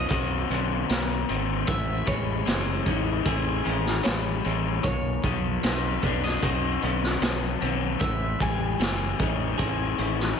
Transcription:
Already playing: overdriven electric guitar B2 B3 C#4 F#4, clean electric guitar D#3 B3
0.09 fingered electric bass B1, overdriven electric guitar C#4 F#4, clean electric guitar F#4, mandolin D#5, kick, closed hi-hat
0.50 fingered electric bass B1, overdriven electric guitar D#3 C#4, clean electric guitar B3, closed hi-hat
0.90 fingered electric bass B1, overdriven electric guitar B3, clean electric guitar C#4, snare, closed hi-hat
1.29 fingered electric bass G#1, overdriven electric guitar D#3 C#4, clean electric guitar B3, closed hi-hat
1.67 fingered electric bass A1, overdriven electric guitar A2, clean electric guitar E3, mandolin E5, kick, closed hi-hat
2.06 fingered electric bass A1, overdriven electric guitar G#3, clean electric guitar G#3, mandolin C#5, kick, closed hi-hat
2.45 fingered electric bass F#1, clean electric guitar E3, overdriven electric guitar C#4 E4, snare, closed hi-hat
2.86 fingered electric bass A1, clean electric guitar G#3, overdriven electric guitar C#4 E4, kick, closed hi-hat
3.26 fingered electric bass A1, overdriven electric guitar C#4 E4, clean electric guitar G#4, kick, closed hi-hat
3.64 fingered electric bass A1, overdriven electric guitar E3 C#4, clean electric guitar G#3, closed hi-hat
3.86 snare
4.03 fingered electric bass A1, overdriven electric guitar G#3, clean electric guitar C#4, mandolin C#5, snare, closed hi-hat
4.44 fingered electric bass A1, overdriven electric guitar E3 C#4, clean electric guitar G#3, closed hi-hat
4.83 fingered electric bass B1, overdriven electric guitar B2, clean electric guitar D#3, mandolin C#5, kick, closed hi-hat
5.23 fingered electric bass B1, overdriven electric guitar F#3, clean electric guitar B3, kick, closed hi-hat
5.63 fingered electric bass B1, clean electric guitar D#3, overdriven electric guitar C#4 D#4, mandolin B4, snare, closed hi-hat
6.02 fingered electric bass B1, clean electric guitar B3, overdriven electric guitar C#4 D#4, kick, closed hi-hat
6.24 mandolin D#5, snare
6.42 fingered electric bass B1, overdriven electric guitar C#4 D#4, clean electric guitar F#4, mandolin D#5, kick, closed hi-hat
6.82 fingered electric bass B1, overdriven electric guitar D#3 C#4, clean electric guitar B3, closed hi-hat
7.03 snare
7.21 fingered electric bass B1, overdriven electric guitar F#3, clean electric guitar C#4, snare, closed hi-hat
7.61 fingered electric bass B1, overdriven electric guitar D#3 C#4, clean electric guitar B3, closed hi-hat
8.00 fingered electric bass A1, overdriven electric guitar A2, clean electric guitar E3, mandolin E5, kick, closed hi-hat
8.40 fingered electric bass A1, overdriven electric guitar G#3, mandolin G#5, kick, closed hi-hat
8.79 fingered electric bass F#1, clean electric guitar E3, overdriven electric guitar C#4 E4, snare, closed hi-hat
9.19 fingered electric bass A1, overdriven electric guitar C#4 E4, kick, closed hi-hat
9.58 fingered electric bass A1, overdriven electric guitar C#4 E4, clean electric guitar G#4, kick, closed hi-hat
9.98 fingered electric bass A1, overdriven electric guitar E3 C#4, closed hi-hat
10.20 snare

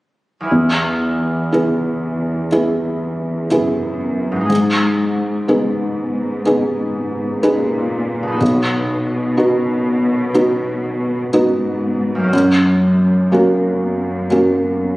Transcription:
0.41 harp E2 E4
0.45 harp G#4 B4
0.51 felt piano E2, cello section E2
1.52 felt piano B3 E4 G#4
2.52 felt piano B3 E4 G#4
3.49 cello section F#2, felt piano B3 E4 G#4
4.32 harp G#2
4.36 harp G#3
4.41 harp D#4
4.45 cello section G#2, harp G#4
4.50 felt piano G#2
5.48 felt piano B3 D#4 G#4
6.46 felt piano B3 D#4 G#4
7.43 cello section A#2, felt piano D#4 G#4 B4
8.23 harp B2
8.28 harp B3
8.32 harp D#4
8.36 harp F#4
8.41 felt piano B1, cello section B2
9.37 felt piano B3 D#4 F#4
10.34 felt piano B3 D#4 F#4
11.33 cello section G#2, felt piano B3 D#4 F#4
12.15 harp F#2
12.19 harp A#3
12.24 harp C#4
12.28 harp F#4
12.33 felt piano F#2, cello section F#2
13.32 felt piano A#3 C#4 F#4
14.30 felt piano A#3 C#4 F#4

